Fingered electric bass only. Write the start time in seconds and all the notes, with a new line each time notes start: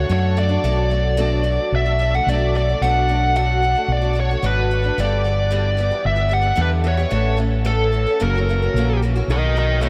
0.10 F#2
0.64 B1
1.72 B1
2.27 B1
2.81 B1
3.88 B1
4.43 G#1
4.98 G1
6.05 G1
6.58 E2
7.11 A1
8.21 F#1
8.74 A#1
9.28 B1